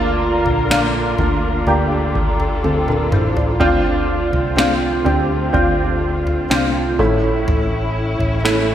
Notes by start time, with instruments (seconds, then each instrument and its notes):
Already playing: fingered electric bass D2, upright piano D3 A#3 C4 D4 F4 A4, string section D3 D4 F4 A#4
0.46 fingered electric bass A#1, floor tom
0.70 upright piano A#3 D4 F4, snare
1.18 fingered electric bass D2, upright piano A#3 D4 F4, kick, floor tom
1.66 fingered electric bass D2, upright piano A#3 D4 G4, string section A4, floor tom
2.15 kick
2.40 floor tom
2.64 fingered electric bass D2, upright piano C4 A4, high tom
2.88 upright piano D4 A#4, mid tom
3.12 fingered electric bass A1, upright piano E4 C5, mid tom
3.37 upright piano F4 D5, floor tom
3.60 fingered electric bass D2, upright piano D3 C4 D4 F4, string section A3 C4, kick, floor tom
4.33 fingered electric bass C2, floor tom
4.56 upright piano C4 D4 F4, snare
5.05 fingered electric bass D2, upright piano C4 D4 G4, floor tom
5.53 fingered electric bass D2, upright piano C4 D4 F4, kick, floor tom
6.27 floor tom
6.50 fingered electric bass C2, upright piano C4 D4 F4, snare
6.99 fingered electric bass A1, upright piano A2 A3 C#4 E4, string section C#4 E4, kick
7.47 fingered electric bass A1, floor tom
8.19 fingered electric bass A1, floor tom
8.44 upright piano A3 C#4 E4, snare